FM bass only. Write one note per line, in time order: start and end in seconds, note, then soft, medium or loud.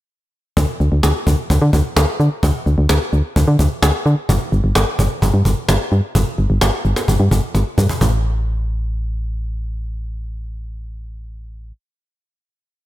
0.57 0.66 D2 loud
0.80 0.89 D2 loud
0.92 1.01 D2 medium
1.03 1.13 D2 loud
1.27 1.36 D2 loud
1.50 1.59 D2 loud
1.62 1.71 D3 loud
1.73 1.82 D2 loud
1.96 2.06 D2 loud
2.20 2.29 D3 medium
2.43 2.52 D2 loud
2.66 2.76 D2 loud
2.78 2.87 D2 loud
2.89 2.99 D2 loud
3.13 3.22 D2 loud
3.36 3.45 D2 loud
3.48 3.57 D3 loud
3.59 3.69 D2 loud
3.82 3.92 D2 loud
4.06 4.15 D3 loud
4.29 4.38 G1 loud
4.52 4.62 G1 loud
4.64 4.73 G1 loud
4.75 4.85 G1 loud
4.99 5.08 G1 medium
5.22 5.31 G1 loud
5.34 5.43 G2 medium
5.45 5.55 G1 medium
5.68 5.78 G1 loud
5.92 6.01 G2 medium
6.15 6.24 G1 loud
6.38 6.48 G1 loud
6.50 6.59 G1 loud
6.62 6.71 G1 loud
6.85 6.94 G1 loud
7.08 7.17 G1 loud
7.20 7.29 G2 loud
7.31 7.41 G1 loud
7.55 7.64 G1 loud
7.78 7.87 G2 medium
8.01 11.72 A1 loud